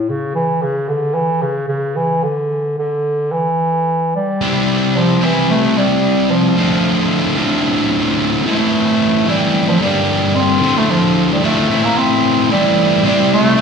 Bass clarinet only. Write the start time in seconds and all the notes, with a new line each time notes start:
Already playing: A2
0.09 C#3
0.35 E3
0.63 C#3
0.89 D3
1.15 E3
1.42 C#3
1.68 C#3
1.96 E3
2.24 D3
2.78 D3
3.32 E3
4.16 G3
4.97 F3
5.24 E3
5.51 A3
5.78 G3
6.31 F3
8.47 A3
9.30 G3
9.69 F3
9.82 G3
10.36 C4
10.78 A3
10.91 F3
11.32 G3
11.44 A3
11.84 A#3
11.98 C4
12.52 G3
13.06 G3
13.33 A3